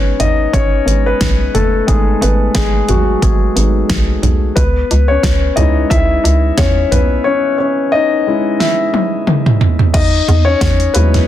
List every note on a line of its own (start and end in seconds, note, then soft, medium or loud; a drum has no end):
0.00 0.14 G#1 medium
0.00 0.86 G#3 soft
0.00 0.86 B3 medium
0.00 0.17 C#4 medium
0.00 0.20 D#4 medium
0.00 1.06 B4 medium
0.00 0.21 C#5 medium
0.20 0.47 G#1 medium
0.20 0.52 D#4 medium
0.20 0.55 D#5 loud
0.20 closed hi-hat medium
0.20 floor tom medium
0.53 0.81 G#1 medium
0.53 1.03 C#4 medium
0.53 1.02 C#5 loud
0.53 kick loud
0.53 closed hi-hat medium
0.86 1.14 G#1 medium
0.86 1.17 G#3 soft
0.86 1.05 B3 soft
0.86 1.17 D#4 soft
0.86 closed hi-hat medium
1.06 1.51 B3 medium
1.06 1.56 B4 medium
1.21 1.48 B1 medium
1.21 kick loud
1.21 snare loud
1.21 closed hi-hat medium
1.54 1.82 F#1 medium
1.54 1.86 A3 medium
1.54 1.89 A4 medium
1.54 closed hi-hat medium
1.54 floor tom medium
1.87 2.16 G#1 loud
1.87 2.20 G#3 medium
1.87 2.21 B3 soft
1.87 2.85 D#4 medium
1.87 2.19 G#4 medium
1.87 kick loud
1.87 closed hi-hat medium
2.21 2.49 G#1 loud
2.21 2.54 B3 medium
2.21 2.57 B4 medium
2.21 closed hi-hat medium
2.55 2.82 G#1 loud
2.55 2.87 G#3 medium
2.55 2.90 G#4 medium
2.55 kick loud
2.55 snare loud
2.55 closed hi-hat medium
2.89 3.16 G#1 medium
2.89 3.20 F#3 medium
2.89 3.20 F#4 medium
2.89 closed hi-hat medium
2.89 floor tom medium
3.22 3.50 G#1 medium
3.22 3.54 G#3 medium
3.22 3.86 G#4 medium
3.22 kick loud
3.22 closed hi-hat loud
3.56 3.83 G#1 loud
3.56 3.86 G#3 soft
3.56 3.86 B3 soft
3.56 3.87 D#4 medium
3.56 closed hi-hat medium
3.89 4.17 B1 medium
3.89 kick medium
3.89 snare loud
3.89 closed hi-hat medium
4.23 4.50 B1 medium
4.23 closed hi-hat medium
4.23 floor tom medium
4.56 4.84 C#2 medium
4.56 5.06 B3 medium
4.56 5.10 B4 medium
4.56 kick medium
4.56 closed hi-hat medium
4.91 5.18 C#2 loud
4.91 closed hi-hat medium
5.08 5.55 C#4 medium
5.08 5.58 C#5 medium
5.23 5.51 C#2 loud
5.23 kick loud
5.23 snare loud
5.23 closed hi-hat medium
5.56 5.85 C#2 medium
5.56 6.03 G#3 medium
5.56 6.04 C#4 soft
5.56 5.89 D#4 medium
5.56 5.91 E4 medium
5.56 5.91 D#5 medium
5.56 closed hi-hat medium
5.56 floor tom medium
5.90 6.18 C#2 medium
5.90 6.55 E4 medium
5.90 6.60 E5 loud
5.90 kick loud
5.90 closed hi-hat medium
6.24 6.52 C#2 loud
6.24 closed hi-hat medium
6.58 6.86 E2 medium
6.58 6.90 C#4 medium
6.58 6.89 C#5 medium
6.58 kick medium
6.58 snare medium
6.58 closed hi-hat medium
6.91 7.19 B1 medium
6.91 7.24 B3 medium
6.91 7.23 B4 medium
6.91 closed hi-hat medium
6.91 floor tom medium
7.24 7.57 C#4 medium
7.24 7.57 C#5 medium
7.58 7.91 C#4 medium
7.58 7.93 C#5 medium
7.92 8.56 D#4 medium
7.92 8.61 D#5 loud
8.27 9.23 G#3 medium
8.27 9.24 C#4 medium
8.27 8.60 E4 medium
8.60 9.57 E4 medium
8.60 9.56 E5 medium
8.60 snare medium
8.94 high tom medium
9.27 mid tom medium
9.46 mid tom medium
9.61 floor tom medium
9.79 floor tom medium
9.94 10.22 E2 medium
9.94 10.44 D#4 medium
9.94 10.48 D#5 loud
9.94 kick loud
9.94 closed hi-hat medium
9.94 crash medium
10.28 10.56 E2 loud
10.28 closed hi-hat medium
10.28 floor tom medium
10.45 10.92 C#4 medium
10.45 10.95 C#5 loud
10.61 10.89 E2 loud
10.61 kick loud
10.61 snare loud
10.61 closed hi-hat medium
10.80 closed hi-hat soft
10.94 11.22 D#2 loud
10.94 11.28 F#3 soft
10.94 11.28 G#3 soft
10.94 11.27 B3 medium
10.94 11.28 E4 medium
10.94 11.26 B4 medium
10.94 closed hi-hat medium
11.14 snare soft
11.14 closed hi-hat soft
11.14 floor tom medium